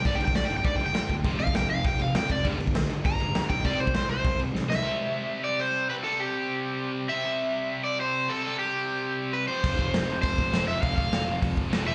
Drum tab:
CC |x-x-x-x-x-x-x-x-|x-x-x-x-x-x-x-x-|x-x-x-x-x-x-x-x-|x-x-x-x-x-x-----|
HH |----------------|----------------|----------------|----------------|
SD |----o-------o---|----o-------o---|----o-------o---|----o-------o-o-|
BD |o--o----o-----o-|o--o----o-----o-|o--o----o-----o-|o--o----o-------|

CC |----------------|----------------|----------------|----------------|
HH |----------------|----------------|----------------|----------------|
SD |----------------|----------------|----------------|----------------|
BD |----------------|----------------|----------------|----------------|

CC |x---------------|----------------|
HH |----o---o---o---|o---o---o---o---|
SD |----o-------o---|----o-------o---|
BD |o-o-----o-o-----|o-o-----o-o-----|